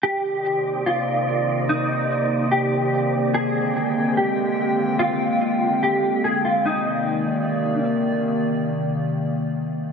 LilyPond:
<<
  \new Staff \with { instrumentName = "Synth texture" } { \time 4/4 \key c \minor \tempo 4 = 145 << { <c' d''>1~ | <c' d''>1~ | <c' d''>1 | r1 |
r1 | r1 | } \\ { <ees' bes'>1~ | <ees' bes'>1 | <aes bes' g''>1 | r1 |
r1 | r1 | } >> }
  \new Staff \with { instrumentName = "Clean electric guitar" } { \time 4/4 \key c \minor g'2 f'2 | ees'2 g'2 | aes'2 g'2 | f'2 g'4 aes'8 f'8 |
ees'2. r4 | r1 | }
  \new Staff \with { instrumentName = "Ambient pad" } { \time 4/4 \key c \minor <c ees bes d''>1~ | <c ees bes d''>1 | <d aes c' g''>1~ | <d aes c' g''>1 |
<c ees bes d''>1~ | <c ees bes d''>1 | }
>>